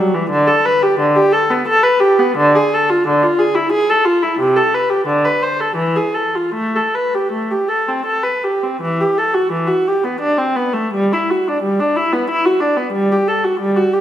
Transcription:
0.00 0.14 F#3 medium
0.15 0.31 E3 medium
0.30 0.47 D3 medium
0.47 0.64 A4 medium
0.66 0.82 B4 medium
0.82 0.99 G4 medium
0.99 1.15 D3 medium
1.16 1.32 G4 medium
1.33 1.49 A4 medium
1.50 1.66 B3 medium
1.68 1.84 A4 medium
1.83 2.01 B4 medium
2.00 2.18 G4 medium
2.19 2.37 B3 medium
2.37 2.54 D3 medium
2.55 2.72 G#4 medium
2.74 2.90 A4 medium
2.90 3.06 F4 medium
3.07 3.22 D3 medium
3.23 3.39 F4 medium
3.39 3.55 G#4 medium
3.55 3.72 E4 medium
3.72 3.88 G#4 medium
3.90 4.06 A4 medium
4.05 4.22 F4 medium
4.22 4.39 E4 medium
4.39 4.56 C3 medium
4.56 4.73 A4 medium
4.74 4.90 B4 medium
4.90 5.07 G4 medium
5.06 5.23 D3 medium
5.25 5.41 B4 medium
5.42 5.59 C5 medium
5.61 5.77 A4 medium
5.75 5.93 E3 medium
5.96 6.13 G#4 soft
6.14 6.33 A4 soft
6.35 6.54 F4 soft
6.54 6.74 A3 medium
6.75 6.94 A4 soft
6.95 7.13 B4 soft
7.15 7.33 G4 soft
7.32 7.50 A3 soft
7.51 7.69 G4 soft
7.68 7.87 A4 soft
7.88 8.06 C4 soft
8.06 8.24 A4 medium
8.23 8.43 B4 soft
8.44 8.63 G4 soft
8.63 8.81 C4 soft
8.81 8.98 E3 medium
9.00 9.17 G4 medium
9.18 9.35 A4 medium
9.34 9.52 F#4 medium
9.52 9.69 E3 medium
9.68 9.85 F#4 medium
9.87 10.04 G4 medium
10.04 10.21 B3 soft
10.20 10.37 D4 medium
10.38 10.56 C4 medium
10.56 10.74 B3 medium
10.73 10.92 A3 medium
10.93 11.11 G3 medium
11.13 11.29 E4 medium
11.30 11.47 F#4 soft
11.48 11.64 D4 medium
11.62 11.79 G3 medium
11.80 11.97 D4 medium
11.96 12.13 E4 medium
12.13 12.30 B3 medium
12.30 12.46 E4 medium
12.46 12.62 F#4 medium
12.60 12.78 D4 medium
12.77 12.94 B3 medium
12.92 13.10 G3 medium
13.12 13.29 G4 medium
13.28 13.45 A4 medium
13.44 13.61 F#4 medium
13.60 13.77 G3 medium
13.76 13.94 F#4 medium
13.93 14.01 G4 medium

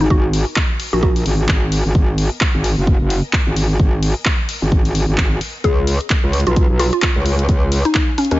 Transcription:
0.00 6.86 B3 medium
0.00 0.07 D#4 medium
0.00 6.70 A#4 medium
0.00 6.53 D#5 medium
0.00 5.64 G#5 medium
0.10 0.45 G#1 medium
0.10 0.27 F#4 medium
0.10 kick loud
0.33 open hi-hat loud
0.56 kick loud
0.56 clap loud
0.80 open hi-hat loud
0.93 1.24 A#1 medium
0.93 0.99 F#4 medium
1.03 1.11 F#4 medium
1.03 kick loud
1.16 open hi-hat medium
1.26 1.47 G#1 medium
1.26 open hi-hat loud
1.49 1.83 G#1 medium
1.49 kick loud
1.49 clap loud
1.72 open hi-hat loud
1.85 1.93 G#1 loud
1.95 2.29 G#1 medium
1.95 kick loud
2.18 open hi-hat loud
2.41 kick loud
2.41 clap loud
2.54 2.75 G#1 loud
2.64 open hi-hat loud
2.78 2.99 F#1 medium
2.87 kick loud
3.01 3.22 F#1 medium
3.10 open hi-hat loud
3.33 kick loud
3.33 clap loud
3.47 3.78 G#1 medium
3.56 open hi-hat loud
3.80 4.14 G#1 medium
3.80 kick loud
4.03 open hi-hat loud
4.25 kick loud
4.25 clap loud
4.49 open hi-hat loud
4.62 5.06 G#1 medium
4.72 kick loud
4.85 open hi-hat medium
4.95 open hi-hat loud
5.08 5.40 G#1 loud
5.18 kick loud
5.18 clap loud
5.41 open hi-hat loud
5.64 5.98 C#2 medium
5.64 8.39 C#4 medium
5.64 5.81 G#4 loud
5.64 kick loud
5.64 closed hi-hat medium
5.87 open hi-hat loud
6.01 closed hi-hat soft
6.10 kick loud
6.10 clap loud
6.10 closed hi-hat medium
6.18 8.39 G#4 medium
6.24 6.45 C#2 loud
6.33 open hi-hat loud
6.40 closed hi-hat medium
6.47 6.68 B1 medium
6.47 6.61 F4 medium
6.47 closed hi-hat soft
6.53 8.39 F5 medium
6.53 8.39 G#5 medium
6.53 kick loud
6.53 closed hi-hat medium
6.70 6.91 B1 medium
6.79 6.88 F4 medium
6.79 open hi-hat loud
6.93 6.99 F4 medium
6.93 closed hi-hat medium
7.02 kick loud
7.02 clap loud
7.02 closed hi-hat medium
7.16 7.47 C#2 medium
7.26 open hi-hat loud
7.39 closed hi-hat medium
7.49 7.83 C#2 loud
7.49 kick loud
7.49 closed hi-hat medium
7.72 open hi-hat loud
7.85 8.00 D#4 medium
7.85 closed hi-hat medium
7.95 kick loud
7.95 clap loud
7.95 closed hi-hat medium
8.18 8.27 C#4 medium
8.18 open hi-hat loud
8.25 closed hi-hat medium
8.31 8.39 D#2 medium
8.31 8.38 C#4 medium
8.31 closed hi-hat medium

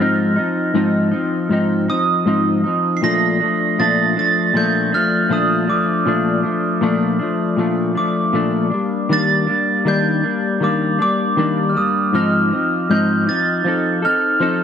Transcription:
0.00 0.37 G#2 medium
0.00 0.37 F3 medium
0.00 0.37 C4 loud
0.00 0.35 D#4 loud
0.00 1.09 F6 medium
0.36 0.73 F3 soft
0.36 0.74 C4 soft
0.36 0.74 D#4 medium
0.74 1.12 G#2 medium
0.74 1.12 F3 loud
0.74 1.12 C4 loud
0.74 1.10 D#4 loud
1.11 1.49 F3 soft
1.11 1.51 C4 medium
1.11 1.50 D#4 medium
1.49 1.88 G#2 medium
1.49 1.88 F3 medium
1.49 1.89 C4 medium
1.49 1.87 D#4 medium
1.88 2.26 F3 soft
1.88 2.26 C4 medium
1.88 2.26 D#4 medium
1.88 2.99 D#6 loud
2.26 2.64 G#2 medium
2.26 2.64 F3 medium
2.26 2.65 C4 medium
2.26 2.63 D#4 medium
2.64 3.02 F3 soft
2.64 3.03 C4 soft
2.64 3.02 D#4 medium
2.97 3.03 C7 medium
3.02 3.40 A#2 medium
3.02 3.40 F3 medium
3.02 3.41 A3 loud
3.02 3.39 D4 medium
3.02 3.81 A#6 loud
3.40 3.79 F3 soft
3.40 3.79 A3 medium
3.40 3.78 D4 medium
3.79 4.16 A#2 medium
3.79 4.17 F3 medium
3.79 4.17 A3 medium
3.79 4.15 D4 loud
3.79 4.18 A6 loud
4.16 4.54 F3 soft
4.16 4.55 A3 medium
4.16 4.54 D4 medium
4.16 4.56 A6 loud
4.54 4.92 A#2 medium
4.54 4.92 F3 medium
4.54 4.93 A3 medium
4.54 4.91 D4 medium
4.54 4.94 G6 loud
4.92 5.29 F3 soft
4.92 5.30 A3 medium
4.92 5.30 D4 medium
4.92 5.32 F6 loud
5.29 5.67 A#2 medium
5.29 5.68 F3 medium
5.29 5.67 A3 medium
5.29 5.66 D4 loud
5.29 5.70 D#6 loud
5.67 6.06 F3 soft
5.67 6.06 A3 soft
5.67 6.05 D4 medium
5.67 7.96 D6 medium
6.06 6.44 A#2 medium
6.06 6.44 F3 medium
6.06 6.43 A3 medium
6.06 6.42 D4 loud
6.43 6.81 F3 soft
6.43 6.82 A3 medium
6.43 6.81 D4 medium
6.81 7.19 A#2 loud
6.81 7.20 F3 loud
6.81 7.20 A3 loud
6.81 7.18 D4 loud
7.19 7.57 F3 medium
7.19 7.58 A3 medium
7.19 7.57 D4 medium
7.57 7.95 A#2 medium
7.57 7.96 F3 medium
7.57 7.96 A3 medium
7.57 7.94 D4 medium
7.95 8.33 F3 soft
7.95 8.34 A3 soft
7.95 8.33 D4 medium
7.95 8.68 D6 medium
8.33 8.71 A#2 medium
8.33 8.72 F3 medium
8.33 8.72 A3 loud
8.33 8.69 D4 loud
8.70 9.09 G3 soft
8.70 9.10 A#3 medium
8.70 9.09 D4 medium
9.09 9.47 D#3 medium
9.09 9.48 G3 medium
9.09 9.48 A#3 loud
9.09 9.46 D4 loud
9.09 9.89 A6 loud
9.47 9.85 G3 medium
9.47 9.85 A#3 medium
9.47 9.85 D4 medium
9.85 10.23 D#3 medium
9.85 10.24 G3 medium
9.85 10.24 A#3 medium
9.85 10.22 D4 loud
9.85 10.65 G6 loud
10.23 10.61 G3 soft
10.23 10.62 A#3 medium
10.23 10.61 D4 medium
10.60 10.99 D#3 medium
10.60 11.00 G3 medium
10.60 10.99 A#3 medium
10.60 10.98 D4 medium
10.60 11.01 D6 loud
10.99 11.36 G3 soft
10.99 11.37 A#3 medium
10.99 11.37 D4 medium
10.99 11.72 D6 loud
11.37 11.75 D#3 medium
11.37 11.75 G3 medium
11.37 11.75 A#3 medium
11.37 11.73 D4 loud
11.69 11.76 F6 medium
11.75 12.14 G3 soft
11.75 12.14 A#3 medium
11.75 12.13 D4 medium
11.75 12.15 D#6 medium
12.13 12.51 G#2 medium
12.13 12.52 F3 medium
12.13 12.52 C4 loud
12.13 12.50 D#4 medium
12.13 12.92 F6 loud
12.51 12.89 F3 soft
12.51 12.90 C4 medium
12.51 12.89 D#4 medium
12.90 13.27 G#2 medium
12.90 13.28 F3 medium
12.90 13.28 C4 medium
12.90 13.26 D#4 medium
12.90 13.29 G6 loud
13.27 13.63 F3 soft
13.27 13.65 C4 soft
13.27 13.65 D#4 medium
13.27 14.38 A6 medium
13.65 14.03 F3 medium
13.65 14.04 C4 medium
13.65 14.03 D#4 medium
13.65 14.01 A4 medium
14.02 14.40 C4 soft
14.02 14.41 D#4 medium
14.02 14.41 A4 medium
14.02 14.64 F6 loud
14.40 14.64 F3 medium
14.40 14.64 C4 loud
14.40 14.64 D#4 loud
14.40 14.64 A4 loud

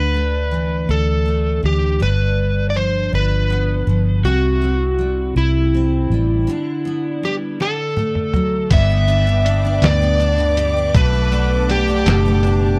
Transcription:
0.00 0.85 D2 medium
0.00 3.27 D3 medium
0.00 0.14 A3 soft
0.00 0.89 D4 medium
0.00 0.93 B4 medium
0.14 1.24 A3 soft
0.51 1.62 E3 soft
0.89 1.60 D2 medium
0.89 2.00 D4 soft
0.89 1.61 A4 medium
1.26 2.08 A3 soft
1.63 1.99 D2 medium
1.63 2.08 E3 soft
1.63 1.99 G4 medium
2.00 3.09 G1 medium
2.00 4.24 G2 medium
2.00 3.11 D4 soft
2.00 2.70 B4 medium
2.70 2.76 D5 soft
2.74 3.86 F3 soft
2.74 3.14 C5 medium
3.13 3.84 G1 medium
3.13 4.24 D4 soft
3.13 4.22 B4 medium
3.50 4.32 B3 soft
3.87 4.22 G1 medium
3.87 4.32 F3 soft
4.24 5.32 C2 medium
4.24 6.47 C3 medium
4.24 5.35 E4 medium
4.24 5.37 F#4 medium
4.62 5.73 C4 medium
4.99 6.11 G3 soft
5.36 6.07 C2 medium
5.36 6.48 E4 soft
5.36 7.93 E4 medium
5.74 6.56 C4 soft
6.10 6.45 A1 medium
6.10 6.56 G3 soft
6.47 7.60 D3 medium
6.47 9.07 D4 medium
6.85 7.67 B3 soft
7.23 7.68 G3 soft
7.23 7.35 G4 medium
7.60 9.27 D3 medium
7.60 8.68 A4 medium
7.60 snare soft
7.96 8.79 A3 soft
7.96 high tom medium
8.15 mid tom soft
8.34 8.79 F#3 soft
8.34 mid tom medium
8.71 9.79 G1 loud
8.71 9.81 G2 medium
8.71 9.07 B3 medium
8.71 10.92 B4 medium
8.71 10.92 D5 soft
8.71 9.87 E5 loud
8.71 10.92 G5 medium
8.71 12.79 D6 medium
8.71 kick loud
8.71 closed hi-hat medium
8.71 crash medium
8.90 9.46 B3 soft
9.08 9.82 B3 medium
9.08 9.64 D4 medium
9.08 closed hi-hat medium
9.27 10.38 D3 medium
9.45 10.01 B3 medium
9.45 10.19 D4 medium
9.45 closed hi-hat medium
9.65 10.19 D4 medium
9.82 10.90 D2 medium
9.82 10.94 G2 medium
9.82 10.94 B3 medium
9.82 10.99 D5 loud
9.82 snare loud
9.82 closed hi-hat medium
10.02 10.57 B3 medium
10.20 11.68 D4 medium
10.20 10.76 D4 medium
10.20 closed hi-hat medium
10.38 10.95 D3 medium
10.57 11.13 B3 medium
10.57 11.02 G4 medium
10.57 closed hi-hat medium
10.77 11.32 D4 medium
10.94 12.02 B1 loud
10.94 12.05 B2 medium
10.94 11.31 A3 medium
10.94 12.79 B4 medium
10.94 11.72 B4 loud
10.94 12.79 F#5 medium
10.94 12.79 A5 medium
10.94 kick loud
10.94 closed hi-hat medium
11.13 11.69 A3 medium
11.32 12.06 A3 medium
11.32 11.86 D4 medium
11.32 closed hi-hat medium
11.69 12.25 A3 medium
11.69 12.42 D4 medium
11.69 12.79 G4 medium
11.69 closed hi-hat medium
11.88 12.43 D4 medium
12.06 12.79 F#1 loud
12.06 12.79 B2 medium
12.06 12.79 A3 medium
12.06 snare loud
12.06 closed hi-hat medium
12.26 12.79 A3 medium
12.43 12.79 D4 medium
12.43 closed hi-hat medium

